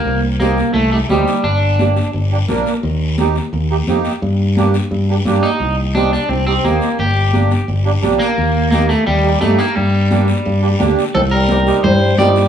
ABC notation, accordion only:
X:1
M:4/4
L:1/8
Q:1/4=173
K:Cdor
V:1 name="Accordion"
z2 [CEG] z2 [CEG] [CEG] z | z2 [B,DG] z2 [B,DG] [B,DB] z | z2 [B,EG] z2 [B,EG] [B,EG] z | z2 [B,DG] z2 [B,DG] [B,DG] z |
z2 [CEG] z2 [CEG] [CEG] z | z2 [B,DG] z2 [B,DG] [B,DG] z | z2 [B,EG] z2 [B,EG] [B,EG] z | z2 [B,DG] z2 [B,DG] [B,DG] z |
z2 [CEG] [CEG] z2 [CEG] z |]